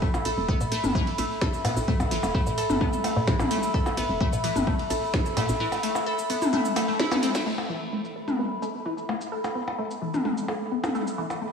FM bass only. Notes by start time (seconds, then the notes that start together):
0.14 A1
0.25 A1
0.37 E1
0.61 A2
0.84 G1
1.18 A1
1.65 A2
1.77 A1
2.00 A1
2.11 A1
2.23 E1
2.46 A2
2.70 G1
3.16 A2
3.40 A1
3.86 A1
3.97 A1
4.09 E1
4.33 A2
4.56 G1
4.90 A1
5.37 A2
5.49 A1